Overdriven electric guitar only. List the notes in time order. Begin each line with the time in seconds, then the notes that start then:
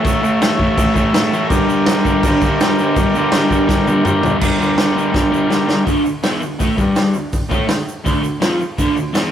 0.03 A2 E3 A3
0.21 A2 E3 A3
0.41 A2 E3 A3
0.57 A2 E3 A3
0.76 A2 E3 A3
0.94 A2 E3 A3
1.12 A2 E3 A3
1.31 A2 E3 A3
1.50 G2 D3 G3
1.67 G2 D3 G3
1.86 G2 D3 G3
2.05 G2 D3 G3
2.24 G2 D3 G3
2.42 G2 D3 G3
2.61 G2 D3 G3
2.79 G2 D3 G3
2.98 G2 D3 G3
3.15 G2 D3 G3
3.33 G2 D3 G3
3.50 G2 D3 G3
3.67 G2 D3 G3
3.86 G2 D3 G3
4.03 G2 D3 G3
4.21 G2 D3 G3
4.39 G2 D3 G3
4.59 G2 D3 G3
4.77 G2 D3 G3
4.96 G2 D3 G3
5.12 G2 D3 G3
5.30 G2 D3 G3
5.48 G2 D3 G3
5.66 G2 D3 G3
5.85 D2 D3
6.03 D2
6.23 E2 E3
6.42 D2
6.59 A2 A3
6.77 G2 G3
7.13 D2
7.49 A2 A3
7.68 D2
8.04 D2 D3
8.22 D2
8.40 F2 F3
8.61 muted overdriven electric guitar stroke
8.78 D2 D3
8.96 D2
9.13 E2 E3